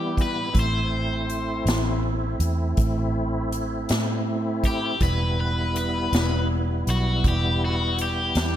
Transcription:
Already playing: fingered electric bass E3, tonewheel organ G3 B3 E4, overdriven electric guitar G4
0.17 kick, closed hi-hat
0.22 overdriven electric guitar B4
0.53 fingered electric bass A1, tonewheel organ A3 C4 E4, kick, closed hi-hat
0.60 overdriven electric guitar C5
1.30 closed hi-hat
1.66 fingered electric bass A1, snare, closed hi-hat
2.40 fingered electric bass E2, closed hi-hat
2.77 fingered electric bass A1, kick, closed hi-hat
3.52 closed hi-hat
3.89 fingered electric bass A2, snare, closed hi-hat
4.64 overdriven electric guitar G4, kick, closed hi-hat
5.00 fingered electric bass E1, tonewheel organ G3 B3 E4, overdriven electric guitar B4, kick, closed hi-hat
5.41 overdriven electric guitar B4
5.76 overdriven electric guitar B4, closed hi-hat
6.12 fingered electric bass E1, snare, closed hi-hat
6.87 fingered electric bass B1, overdriven electric guitar F#4, closed hi-hat
7.24 fingered electric bass E1, overdriven electric guitar G4, kick, closed hi-hat
7.65 overdriven electric guitar F#4
7.99 overdriven electric guitar G4, closed hi-hat
8.35 fingered electric bass E2, snare, closed hi-hat

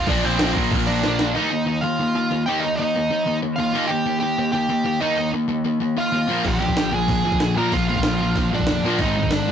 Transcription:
0.07 picked electric bass A#1, overdriven electric guitar A#2 F3 A#3, distorted electric guitar A#2 F3 A#3 D4, lead electric guitar D4 D5, kick, crash
0.23 picked electric bass A#1, distorted electric guitar A#2 F3 A#3 D4, lead electric guitar C4 C5, crash
0.39 picked electric bass A#1, distorted electric guitar A#2 F3 A#3 D4, snare, crash
0.55 picked electric bass A#1, distorted electric guitar A#2 F3 A#3 D4, overdriven electric guitar A#2 F3 A#3, kick, crash
0.71 picked electric bass A#1, distorted electric guitar A#2 F3 A#3 D4, kick, crash
0.87 picked electric bass A#1, distorted electric guitar A#2 F3 A#3 D4, lead electric guitar D4 D5, crash
1.02 picked electric bass A#1, overdriven electric guitar A#2 F3 A#3, distorted electric guitar A#2 F3 A#3 D4, snare
1.19 distorted electric guitar A#2 F3 A#3 D4, snare
1.35 overdriven electric guitar D#3 A#3 D#4, lead electric guitar D#4 D#5
1.51 overdriven electric guitar D#3 A#3
1.67 overdriven electric guitar D#3 A#3
1.81 overdriven electric guitar D#3 A#3, lead electric guitar F4 F5
2.00 overdriven electric guitar D#3 A#3
2.15 overdriven electric guitar D#3 A#3
2.31 overdriven electric guitar D#3 A#3
2.46 overdriven electric guitar D#3 A#3 D#4, lead electric guitar G4 G5
2.60 overdriven electric guitar D#3 A#3, lead electric guitar D#4 D#5
2.77 overdriven electric guitar D#3 A#3, lead electric guitar D#4 D#5
2.96 overdriven electric guitar D#3 A#3
3.11 overdriven electric guitar D#3 A#3
3.27 overdriven electric guitar D#3 A#3
3.42 overdriven electric guitar D#3 A#3
3.56 overdriven electric guitar D#3 A#3, lead electric guitar F4 F5
3.75 overdriven electric guitar D#3 A#3 D#4
3.87 overdriven electric guitar D#3 A#3, lead electric guitar G4 G5
4.06 overdriven electric guitar D#3 A#3
4.20 overdriven electric guitar D#3 A#3, lead electric guitar G4 G5
4.38 overdriven electric guitar D#3 A#3
4.52 overdriven electric guitar D#3 A#3, lead electric guitar G4 G5
4.70 overdriven electric guitar D#3 A#3
4.86 overdriven electric guitar D#3 A#3
5.00 overdriven electric guitar D#3 A#3 D#4, lead electric guitar D#4 D#5
5.18 overdriven electric guitar D#3 A#3
5.33 overdriven electric guitar D#3 A#3
5.50 overdriven electric guitar D#3 A#3
5.66 overdriven electric guitar D#3 A#3
5.82 overdriven electric guitar D#3 A#3
5.97 overdriven electric guitar D#3 A#3, lead electric guitar F4 F5
6.14 overdriven electric guitar D#3 A#3
6.29 overdriven electric guitar A#2 F3 A#3
6.45 picked electric bass A#1, distorted electric guitar A#2 D3 F3 A#3 D4, overdriven electric guitar A#2 F3, lead electric guitar G4 G5, kick, crash
6.61 picked electric bass A#1, overdriven electric guitar A#2 F3
6.68 kick
6.77 picked electric bass A#1, overdriven electric guitar A#2 F3, snare, open hi-hat
6.93 picked electric bass A#1, overdriven electric guitar A#2 F3, lead electric guitar G#4 G#5
7.08 picked electric bass A#1, overdriven electric guitar A#2 F3, kick, open hi-hat
7.25 picked electric bass A#1, overdriven electric guitar A#2 F3
7.32 kick
7.40 picked electric bass A#1, overdriven electric guitar A#2 F3, snare, open hi-hat
7.56 overdriven electric guitar A#2 F3 A#3, picked electric bass A#2, distorted electric guitar A#2 D3 F3 A#3 D4, lead electric guitar A#4 A#5
7.72 picked electric bass A#1, distorted electric guitar A#2 D3 F3 A#3 D4, overdriven electric guitar A#2 F3, lead electric guitar F4 F5, kick, open hi-hat
7.88 overdriven electric guitar A#2 F3, lead electric guitar F4 F5
7.96 kick
8.03 picked electric bass A#1, overdriven electric guitar A#2 F3, snare, open hi-hat
8.20 picked electric bass A#1, overdriven electric guitar A#2 F3
8.36 picked electric bass A#1, overdriven electric guitar A#2 F3, kick, open hi-hat
8.52 picked electric bass A#1, overdriven electric guitar A#2 F3, lead electric guitar D4 D5
8.60 kick
8.67 picked electric bass F1, overdriven electric guitar A#2 F3, snare, open hi-hat
8.83 overdriven electric guitar A#2 F3 A#3, picked electric bass A#2, distorted electric guitar A#2 D3 F3 A#3 D4
8.99 picked electric bass G#1, distorted electric guitar G#2 D#3 G#3 C4 D#4, overdriven electric guitar G#2 D#3 G#3, lead electric guitar D#4 D#5, kick, open hi-hat
9.16 picked electric bass G#1, overdriven electric guitar G#2 D#3
9.23 kick
9.31 picked electric bass G#1, overdriven electric guitar G#2 D#3, lead electric guitar D4 D5, snare, open hi-hat
9.47 overdriven electric guitar G#2 D#3

